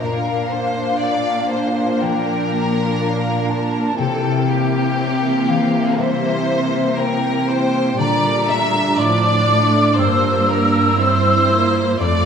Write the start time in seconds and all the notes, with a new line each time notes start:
Already playing: A#3
0.00 A#2 D4 A#4 F5
0.51 D4 C5
1.02 D5
1.51 F4 C5
2.00 F3 A#4 G5
3.00 D5 F5
3.49 F4 A5
3.98 C3 E3 A#3 A4 G5
4.49 C4 G4
4.99 C5
5.49 E3 F5
5.98 G3 C5 E5
6.98 A#4 C5 G5
7.49 E4 C5
7.98 A#2 D3 G3 D4 D5 A#5
8.48 A3 E5
8.98 A2 F3 D5 D6
9.48 A3 F4
9.97 G2 A#3 C5 E6
10.49 A#3 A#4
10.98 C4 E4 C5 D5
11.49 A#3 F4
11.99 F2 A3 F4 D5 D6